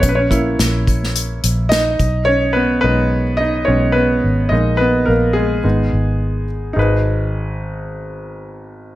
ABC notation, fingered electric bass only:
X:1
M:4/4
L:1/8
Q:"Swing 16ths" 1/4=107
K:G#m
V:1 name="Fingered electric bass" clef=bass
A,,,2 A,,,3 A,,,2 B,,,- | B,,,2 B,,,3 B,,,2 G,,, | A,,,2 A,,,2 G,,, G,,,3 | G,,,8 |]